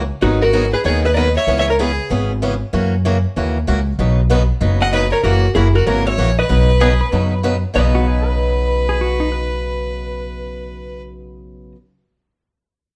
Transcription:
0.21 G#1 D#3 F#3 B3 D#4 F#4 G#4
0.41 F#4 A#4
0.53 D#3 F#3 B3 D#4 G#4
0.73 G#4 B4
0.84 D#2 D#3 F#3 B3 D#4 G#4 C#5
1.04 B4 D#5
1.13 D#3 F#3 B3 D#4 A#4 B4 D5
1.17 G#4 B4 D#5
1.36 C#5 E5
1.47 C#2 C#3 E3 B3 C#4 G#4
1.59 C#5 E5
1.69 A#4 C#5
1.79 C#3 E3 B3 C#4 G#4 B4
2.10 G#1 C#3 E3 B3 C#4 G#4
2.42 C#3 E3 B3 C#4 G#4
2.73 F#2 C#3 E3 A#3 C#4 F#4
3.05 C#3 E3 A#3 C#4 F#4
3.36 D#2 C#3 E3 A#3 C#4 F#4
3.67 C#2 C#3 E3 A#3 C#4 F#4
3.99 B1 B2 C#3 F#3 B3 D#4 B4
4.30 B2 C#3 F#3 B3 D#4 B4
4.61 F#1 B2 C#3 F#3 B3 D#4 B4
4.81 D#5 F#5
4.92 B2 C#3 F#3 B3 D#4 B4 D#5
5.12 A#4 C#5
5.23 F#1 C#3 E3 A#3 C#4 F#4 A#4
5.55 F#1 C#3 E3 A#3 C#4 E4 F#4 G#4
5.75 F#4 A#4
5.86 G#1 C#3 E3 A#3 C#4 F#4 A#4 C#5
6.07 C#5 E5
6.18 A#1 C#3 E3 A#3 C#4 F#4
6.39 B4 D#5
6.49 B1 B2 C#3 F#3 B3 D#4 B4
6.80 B2 C#3 F#3 B3 D#4 G#4 B4
7.01 B4
7.12 F#2 B2 C#3 F#3 B3 D#4 B4
7.43 B2 C#3 F#3 B3 D#4 B4
7.74 B1 B2 C#3 F#3 B3 D#4 B4 D#5
7.95 F#4
8.07 G#4
8.27 B4
8.89 G#4
9.01 F#4
9.20 D#4
9.32 B4

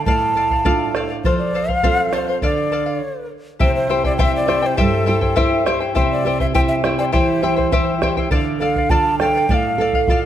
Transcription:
0.05 A2 A4 D5 F5 A5, bombo low
0.35 A4 D5 F5
0.50 D5 F5, bombo low
0.65 A3 D4 F4 A4 D5 F5, bombo low
0.95 A4 D5 F5, bombo rim
1.10 D5 F5
1.24 F3 A4 C5 F5, bombo low
1.38 D5
1.54 A4 C5 F5
1.68 C5 F5, bombo low
1.83 C4 F4 A4 C5 F5, bombo low
2.13 A4 C5 F5, bombo rim
2.28 C5 F5
2.42 D3 A4 D5 F5, bombo low
2.72 A4 D5 F5
2.86 D5 F5
3.60 C3 E4 G4 C5 E5 G5, bombo low
3.75 C5
3.89 E4 G4 C5 E5 G5
4.04 E4 C5 D5 G5, bombo low
4.17 E4 G4 C5 E5 G5, bombo low
4.36 D5
4.48 E4 G4 C5 E5 G5, bombo rim
4.62 E4 C5 G5
4.77 G2 E4 G4 A4 C5 E5 G5, bombo low
5.06 E4 G4 C5 E5 G5
5.21 E4 C5 G5, bombo low
5.36 E4 G4 C5 E5 G5, bombo low
5.66 E4 G4 C5 E5 G5, bombo rim
5.80 E4 C5 G5
5.95 C3 E4 G4 C5 E5 G5, bombo low
6.11 D5
6.25 E4 G4 C5 E5 G5
6.40 E4 C5 E5 G5, bombo low
6.54 E4 G4 C5 E5 G5, bombo low
6.68 E5
6.84 E4 G4 C5 E5 G5, bombo rim
6.99 E4 C5 D5 G5
7.12 E3 E4 G4 C5 E5 G5, bombo low
7.43 E4 G4 C5 E5 G5
7.56 E4 C5 G5, bombo low
7.72 E4 G4 C5 E5 G5, bombo low
8.01 E4 G4 C5 E5 G5, bombo rim, bombo low
8.17 E4 C5 G5, bombo low
8.31 D3 A4 D5 F5, bombo low
8.60 A4 D5 F5
8.76 D5 F5, bombo low
8.90 F4 A4 D5 F5 A5, bombo low
9.19 A4 D5 F5 G5, bombo rim
9.35 D5 F5
9.49 A2 A4 D5 F5 G5, bombo low
9.54 F5
9.78 A4 D5 F5
9.93 D5 F5, bombo low
10.08 F4 A4 D5 F5, bombo low

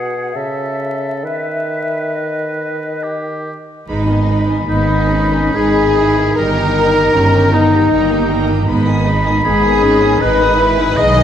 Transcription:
Already playing: B2 G#4 F#5
0.34 C#3 A4 E5
1.23 D#3 B4 E5
2.13 D#5
3.03 G4
3.88 G#1 D#3 G#3 D#4 B4 B5
4.07 D#3 B3 D#5 G#5
4.28 G#3 D#4 B4 B5
4.48 D#3 B3 D#5 G#5
4.66 G#1 G#3 B3 D#4 B4 D#5 B5
4.88 D#3 B3 D#5 G#5
5.09 G#3 C#4 D#4 B4 B5
5.31 D#3 B3 D#5 G#5
5.54 G#1 G#3 D#4 G#4 B4 G#5 B5
5.75 D#3 B3 D#5 G#5
5.95 G#3 D#4 E4 B4 B5
6.16 D#3 B3 D#5 G#5
6.36 G1 G3 D#4 A#4 G5 A#5
6.56 D#3 G4 D#5 G5
6.75 G3 D#4 G5 A#5
6.95 D#3 G4 D#5 G5
7.13 G1 G3 C#4 D#4 G5 A#5
7.33 D#3 G4 D#5 G5
7.52 G3 B3 D#4 D#5 G5 A#5
7.71 D#3 G4 D#5 G5
7.91 G1 G3 A#3 D#4 G5 A#5
8.10 D#3 G4 D#5 G5
8.30 G3 D#4 G5 A#5
8.48 D#3 G4 D#5 G5
8.67 G#1 D#3 G#3 B3 D#4 D#5 B5
8.87 D#3 B3 G#5 D#6
9.05 G#3 D#4 D#5 B5
9.25 D#3 B3 G#5 D#6
9.44 G#1 G#3 B3 D#4 G#4 D#5 G#5 B5
9.64 D#3 B3 G#5 D#6
9.83 G#3 C#4 D#4 D#5 B5
10.01 D#3 B3 G#5 D#6
10.20 G#1 G#3 D#4 B4 D#5 B5
10.39 D#3 B3 G#5 D#6
10.59 G#3 D#4 E4 D#5 B5
10.77 D#3 B3 G#5 D#6
10.96 B1 G#3 D#4 G#4 D#5 G#5 B5 D#6
11.15 D#3 B4 G#5 D#6

